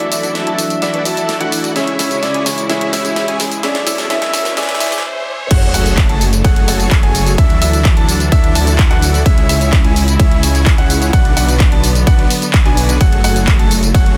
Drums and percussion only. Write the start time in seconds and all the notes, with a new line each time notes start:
0.12 open hi-hat, tambourine
0.23 closed hi-hat, tambourine
0.35 snare, closed hi-hat, tambourine
0.47 closed hi-hat
0.59 open hi-hat, tambourine
0.70 closed hi-hat, tambourine
0.82 snare, closed hi-hat, tambourine
0.94 closed hi-hat
1.05 open hi-hat, tambourine
1.17 closed hi-hat, tambourine
1.29 snare, closed hi-hat, tambourine
1.41 closed hi-hat
1.52 open hi-hat, tambourine
1.64 closed hi-hat, tambourine
1.76 snare, closed hi-hat, tambourine
1.87 closed hi-hat
1.99 snare, open hi-hat, tambourine
2.11 closed hi-hat, tambourine
2.23 snare, closed hi-hat, tambourine
2.34 closed hi-hat
2.46 snare, open hi-hat, tambourine
2.58 closed hi-hat, tambourine
2.70 snare, closed hi-hat, tambourine
2.81 closed hi-hat
2.93 snare, open hi-hat, tambourine
3.05 closed hi-hat, tambourine
3.16 snare, closed hi-hat, tambourine
3.28 closed hi-hat
3.40 snare, open hi-hat, tambourine
3.52 closed hi-hat, tambourine
3.63 snare, closed hi-hat, tambourine
3.75 snare, closed hi-hat
3.87 snare, open hi-hat, tambourine
3.98 snare, closed hi-hat, tambourine
4.10 snare, closed hi-hat, tambourine
4.22 snare, closed hi-hat
4.34 snare, open hi-hat, tambourine
4.45 snare, closed hi-hat, tambourine
4.57 snare, closed hi-hat, tambourine
4.63 snare
4.69 snare, closed hi-hat
4.75 snare
4.80 snare, open hi-hat, tambourine
4.86 snare
4.92 snare, closed hi-hat, tambourine
4.98 snare
5.51 kick, closed hi-hat, ride, tambourine, crash
5.62 closed hi-hat
5.74 open hi-hat, tambourine
5.86 closed hi-hat, tambourine
5.98 kick, clap, closed hi-hat, ride, tambourine
6.09 closed hi-hat
6.21 open hi-hat, tambourine
6.33 closed hi-hat, tambourine
6.45 kick, closed hi-hat, ride, tambourine
6.56 closed hi-hat
6.68 open hi-hat, tambourine
6.80 closed hi-hat, tambourine
6.91 kick, clap, closed hi-hat, ride, tambourine
7.03 closed hi-hat
7.15 open hi-hat, tambourine
7.27 closed hi-hat, tambourine
7.38 kick, closed hi-hat, ride, tambourine
7.50 closed hi-hat
7.62 open hi-hat, tambourine
7.73 closed hi-hat, tambourine
7.85 kick, clap, closed hi-hat, ride, tambourine
7.97 closed hi-hat
8.09 open hi-hat, tambourine
8.20 closed hi-hat, tambourine
8.32 kick, closed hi-hat, ride, tambourine
8.44 closed hi-hat
8.55 open hi-hat, tambourine
8.67 closed hi-hat, tambourine
8.79 kick, clap, closed hi-hat, ride
8.91 clap, closed hi-hat
9.02 open hi-hat, tambourine
9.14 closed hi-hat, tambourine
9.26 kick, closed hi-hat, ride, tambourine
9.38 closed hi-hat
9.49 open hi-hat, tambourine
9.61 closed hi-hat, tambourine
9.73 kick, clap, closed hi-hat, ride, tambourine
9.84 closed hi-hat
9.96 open hi-hat, tambourine
10.08 closed hi-hat, tambourine
10.20 kick, closed hi-hat, ride, tambourine
10.31 closed hi-hat
10.43 open hi-hat, tambourine
10.55 closed hi-hat, tambourine
10.66 kick, clap, closed hi-hat, ride, tambourine
10.78 closed hi-hat
10.90 open hi-hat, tambourine
11.02 closed hi-hat, tambourine
11.13 kick, closed hi-hat, ride, tambourine
11.25 closed hi-hat
11.37 open hi-hat, tambourine
11.48 closed hi-hat, tambourine
11.60 kick, clap, closed hi-hat, ride
11.72 closed hi-hat
11.84 open hi-hat, tambourine
11.95 closed hi-hat, tambourine
12.07 kick, closed hi-hat, ride, tambourine
12.19 closed hi-hat
12.30 open hi-hat, tambourine
12.42 closed hi-hat, tambourine
12.54 kick, clap, closed hi-hat, ride, tambourine
12.66 clap, closed hi-hat
12.77 open hi-hat, tambourine
12.89 closed hi-hat, tambourine
13.01 kick, closed hi-hat, ride, tambourine
13.12 closed hi-hat
13.24 open hi-hat, tambourine
13.36 closed hi-hat, tambourine
13.48 kick, clap, closed hi-hat, ride, tambourine
13.59 closed hi-hat
13.71 open hi-hat, tambourine
13.83 closed hi-hat, tambourine
13.95 kick, closed hi-hat, ride, tambourine
14.06 closed hi-hat